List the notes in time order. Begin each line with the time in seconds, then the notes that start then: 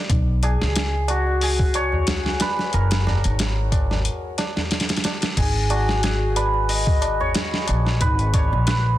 0.10 B1, kick, closed hi-hat, tabla na
0.43 G#4, closed hi-hat, tabla na
0.61 C#2, snare, tabla na
0.76 snare, closed hi-hat, tabla na
1.08 F#4, closed hi-hat, tabla na
1.27 tabla na
1.41 G#4, open hi-hat, tabla na
1.59 kick
1.74 C#5, closed hi-hat, tabla na
1.92 tabla na, tabla ge
2.07 snare, closed hi-hat, tabla na
2.26 snare
2.40 B4, snare, closed hi-hat, tabla na
2.59 snare, tabla na
2.73 F#1 A#4, closed hi-hat, tabla na
2.91 snare, closed hi-hat
3.07 snare, tabla na, tabla ge
3.24 G#1, closed hi-hat, tabla na
3.39 snare, closed hi-hat, tabla na
3.72 kick, closed hi-hat, tabla na
3.91 snare, tabla na, tabla ge
4.05 closed hi-hat, tabla na
4.38 snare, closed hi-hat, tabla na
4.56 snare, tabla na, tabla ge
4.71 snare, closed hi-hat, tabla na
4.80 snare, closed hi-hat
4.89 snare, closed hi-hat
4.97 snare, closed hi-hat
5.04 snare, closed hi-hat, tabla na
5.22 snare, closed hi-hat, tabla na
5.37 G#1 G#4, kick, closed hi-hat, crash, tabla na
5.70 F#4, closed hi-hat, tabla na
5.88 snare, tabla na
6.03 G#4, snare, closed hi-hat, tabla na
6.36 B4, closed hi-hat, tabla na
6.54 tabla na
6.68 D#5, open hi-hat, tabla na
6.87 kick
7.02 closed hi-hat, tabla na
7.20 C#5, tabla na, tabla ge
7.34 snare, closed hi-hat, tabla na
7.54 snare
7.67 A#1, closed hi-hat, tabla na
7.86 snare, tabla na
8.00 G#1 B4, kick, closed hi-hat, tabla na
8.19 closed hi-hat
8.34 C#5, kick, closed hi-hat, tabla na, tabla ge
8.52 A#1, tabla na
8.67 B4, snare, closed hi-hat